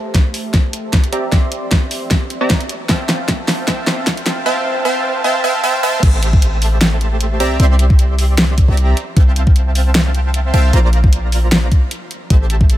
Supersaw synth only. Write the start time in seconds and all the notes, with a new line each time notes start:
Already playing: A3 G4 C5 E5 A5
1.12 C4 G4 D5 E5 A#5
1.32 C4 G4 D5 E5 C6
2.41 C4 G4 D5 E5 A#5
2.89 C4 C5 E5 F5 G5 A5
3.67 C4 C5 E5 F5 G5 A5
4.46 C4 C5 E5 F5 G5 A5
4.85 C4 C5 E5 F5 G5 A5
5.24 C4 C5 E5 F5 G5 A5
5.44 C4 C5 E5 F5 G5 A5
5.63 C4 C5 E5 F5 G5 A5
5.83 C4 C5 E5 F5 G5 A5
6.03 A3 G4 C5 E5
7.40 C4 G4 D5 E5 A#5
7.60 C4 G4 D5 E5 C6
8.68 C4 G4 D5 E5 A#5
9.16 C4 C5 E5 F5 G5 A5
10.54 C4 C5 E5 F5 G5 A5
10.73 A#3 F4 C5 D5 A#5
12.30 A3 G4 C5 E5 A5